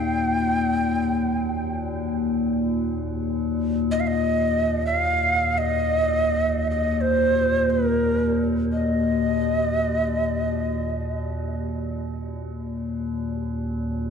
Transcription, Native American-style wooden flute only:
Already playing: G5
3.91 D#5
4.00 F5
4.07 D#5
4.86 F5
5.58 D#5
6.71 D#5
7.01 C5
7.70 A#4
8.72 D#5

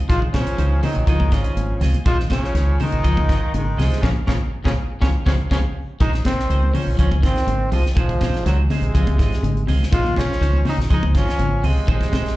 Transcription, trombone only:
0.09 F4
0.34 C#4
0.84 D#4
1.09 D#4
1.34 C#4
2.07 F4
2.32 C#4
2.82 D#4
3.56 D#4
3.81 G#3
4.03 C#4
4.27 C#4
4.66 C#4
5.01 C#4
5.26 C#4
5.51 C#4
6.01 D#4
6.26 C4
6.75 C#4
7.00 C#4
7.24 C4
7.73 F3
7.98 F3
8.47 F#3
8.71 G#3
9.92 F4
10.18 C#4
10.69 D#4
10.94 D#4
11.17 C#4
11.67 G#3
11.91 G#3

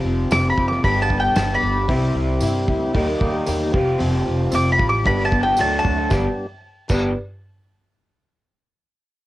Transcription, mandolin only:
0.32 D6
0.50 B5
0.68 D6
0.84 B5
1.02 A5
1.20 G5
1.36 A5
1.54 D5 B5
4.55 D6
4.72 B5
4.89 D6
5.07 B5
5.25 A5
5.43 G5
5.60 A5
5.79 A5

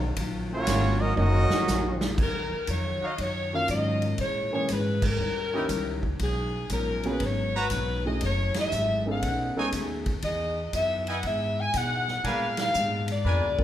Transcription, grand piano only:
3.53 D#3 F#3 A#3 C#4 F4
4.53 E3 G#3 A#3 C#4 G#4
5.53 E3 A#3 C#4 D#4 G4
7.05 F#3 A#3 B3 C#4 G#4
8.06 F#3 A3 C#4 E4 G#4
9.06 B3 C#4 D#4 G#4 A4
9.57 G#3 B3 C#4 D#4 A4
13.59 G#3 B3 D4 F4 A#4

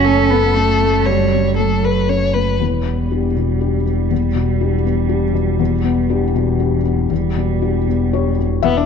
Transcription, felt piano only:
Already playing: F#2 C#3
0.06 A3
0.31 A4
0.56 C#4
0.81 A3
1.07 F#2
1.33 C#3
1.59 A3
1.83 A4
2.09 C#4
2.35 A3
2.60 E2
2.85 B3
3.11 D4 G4
3.36 B2
3.61 D4 G4
3.86 B3
4.11 E2
4.35 B2
4.61 D4 G4
4.85 B3
5.09 D4 G4
5.34 B2
5.59 E2
5.84 B3
6.10 D4 G4
6.35 B2
6.59 D4 G4
6.85 B3
7.10 E2
7.36 B2
7.62 D4 G4
7.88 B3
8.13 D4 G4 C#5
8.38 B2
8.62 E2 E5

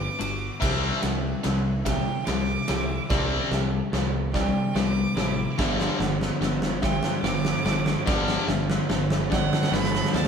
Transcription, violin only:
Already playing: D6
1.85 G5
2.26 D6
4.32 G5
4.75 D6
6.80 G5
7.23 D6
9.31 F#5
9.73 B5
10.15 A5

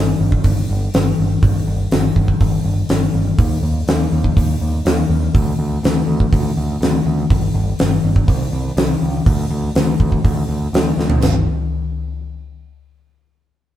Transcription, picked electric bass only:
Already playing: G1
0.20 G1
0.44 G1
0.69 G1
0.94 G1
1.19 G1
1.43 G1
1.67 G1
1.91 G1
2.16 G1
2.41 G1
2.64 G1
2.89 G1
3.14 G1
3.38 D#2
3.63 D#2
3.87 D#2
4.12 D#2
4.36 D#2
4.61 D#2
4.85 D#2
5.09 D#2
5.34 D2
5.59 D2
5.83 D2
6.07 D2
6.33 D2
6.57 D2
6.81 D2
7.06 D2
7.31 G1
7.54 G1
7.80 G1
8.03 G1
8.27 C2
8.52 C2
8.77 C2
9.02 C#2
9.26 D2
9.50 D2
9.75 D2
10.00 D2
10.24 D2
10.49 D2
10.73 D2
10.97 D2
11.23 G1

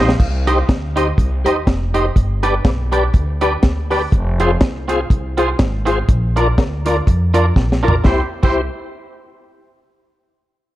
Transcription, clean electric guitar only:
0.47 D#4 G4 C5 D#5
0.96 D#4 G4 C5 D#5
1.46 D#4 G4 C5 D#5
1.94 D#4 G4 C5 D#5
2.43 D4 G4 B4 D5
2.92 D4 G4 B4 D5
3.41 D4 G4 B4 D5
3.91 D4 G4 B4 D5
4.40 C4 F4 G#4 C5
4.88 C4 F4 G#4 C5
5.37 C4 F4 G#4 C5
5.86 C4 F4 G#4 C5
6.36 D4 F4 A#4 D5
6.86 D4 F4 A#4 D5
7.06 muted clean electric guitar stroke
7.34 D4 F4 A#4 D5
7.83 D4 F4 A#4 D5
8.04 C4 E4 G4 C5
8.43 C4 E4 G4 C5

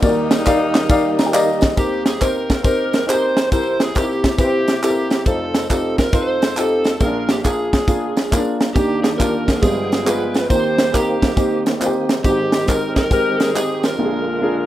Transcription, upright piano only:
0.02 D#2 D#3 A#3 D#4 F#4 A#4 D5
0.08 G4
0.46 D#4 G4 A#4 D5 F5
0.89 D#4 G4 A#4 D5 F5
1.18 A#5
1.26 G5
1.33 D#4 G4 A#4 D5 D#5 F5
1.62 D#5
1.76 D#2 D#3 C4 D#4 G4 A#4
2.20 C4 D#4 G4 C5
2.63 C4 D#4 G4 C5
3.06 C4 D#4 G4 G#4
3.13 A#4
3.51 C2 C3 C4 E4 G4 A#4
3.95 C4 D#4 G4 A#4
4.01 E4
4.38 C4 E4 G4 B4
4.45 C5
4.82 C4 E4 G4 A4
4.89 A#4
5.26 F1 F2 C4 D#4 F4 A4
5.70 C4 D#4 F4 G4
6.13 C4 D#4 F4 C5
6.57 C4 D#4 F4 G4
7.00 A#1 A#2 A#3 C#4 F4 G#4
7.06 D4
7.44 A#3 D4 F4 G#4
7.87 A#3 D4 F4 G#4
8.31 A#3 C#4 F4 A#4
8.37 D4
8.75 D#2 D#3 A#3 D4 G4
9.19 A#3 D4 F4 G4
9.62 G1 G2 G3 G#3 B3 F4
10.05 G#3 B3 F4 G#4
10.49 D#2 D#3 A#3 C4 D#4 F4
10.55 G4
10.93 A#3 C4 D#4 A#4
11.36 A#3 C4 D#4 G4
11.80 A#3 C4 D#4 F4
11.86 G4
12.23 G#1 G#2 G#3 C4 D#4 F#4
12.30 G4
12.66 G#3 C4 D#4 A#4
13.10 G#3 C4 D#4 G4
13.54 G#3 C4 D#4 G4
13.98 A#1 A#2 A#3 D4 F4 G4
14.05 G#4
14.42 A#3 D4 F4 G#4

